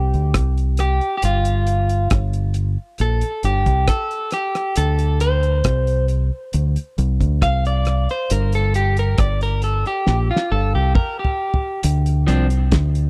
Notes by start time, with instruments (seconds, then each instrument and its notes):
Already playing: fingered electric bass C2, clean electric guitar G4
0.14 fingered electric bass D2, closed hi-hat
0.34 fingered electric bass C2, kick, cross-stick, closed hi-hat
0.57 closed hi-hat
0.77 clean electric guitar G4, cross-stick, closed hi-hat
1.01 closed hi-hat
1.17 clean electric guitar G4
1.22 fingered electric bass G1, clean electric guitar F4, closed hi-hat
1.45 closed hi-hat
1.67 closed hi-hat
1.89 closed hi-hat
2.10 fingered electric bass G1, kick, cross-stick, closed hi-hat
2.33 closed hi-hat
2.54 closed hi-hat
2.98 fingered electric bass A#1, clean electric guitar A4, closed hi-hat
3.21 closed hi-hat
3.43 fingered electric bass G1, clean electric guitar G4, closed hi-hat
3.66 fingered electric bass C2, kick, closed hi-hat
3.88 clean electric guitar A4, kick, cross-stick, closed hi-hat
4.11 closed hi-hat
4.31 clean electric guitar G4, cross-stick, closed hi-hat
4.55 cross-stick, closed hi-hat
4.76 fingered electric bass D2, clean electric guitar A4, closed hi-hat
4.99 closed hi-hat
5.20 clean electric guitar C5, closed hi-hat
5.43 closed hi-hat
5.64 fingered electric bass C2, kick, cross-stick, closed hi-hat
5.87 closed hi-hat
6.08 closed hi-hat
6.53 fingered electric bass D2, closed hi-hat
6.76 closed hi-hat
6.98 fingered electric bass C2, closed hi-hat
7.21 fingered electric bass D2, kick, closed hi-hat
7.42 fingered electric bass C2, clean electric guitar F5, kick, cross-stick, closed hi-hat
7.65 clean electric guitar D5, closed hi-hat
7.85 cross-stick, closed hi-hat
8.09 clean electric guitar C5, closed hi-hat
8.30 fingered electric bass G1, clean electric guitar A#4, closed hi-hat
8.52 clean electric guitar A4, closed hi-hat
8.74 clean electric guitar G4, closed hi-hat
8.97 clean electric guitar A#4, closed hi-hat
9.18 fingered electric bass G1, clean electric guitar D5, kick, cross-stick, closed hi-hat
9.41 clean electric guitar A#4, closed hi-hat
9.62 clean electric guitar A4, closed hi-hat
9.86 clean electric guitar G4, closed hi-hat
10.07 fingered electric bass A#1, snare
10.31 clean electric guitar F4
10.36 snare
10.52 fingered electric bass G1, clean electric guitar A4
10.75 fingered electric bass C2, clean electric guitar G4
10.95 clean electric guitar A#4, kick, mid tom
11.19 clean electric guitar G4
11.24 floor tom
11.54 floor tom
11.83 fingered electric bass D2, closed hi-hat
12.06 closed hi-hat
12.27 fingered electric bass C2, clean electric guitar F3 C4 D4, closed hi-hat
12.50 closed hi-hat
12.72 fingered electric bass D2, kick, snare, closed hi-hat
12.95 closed hi-hat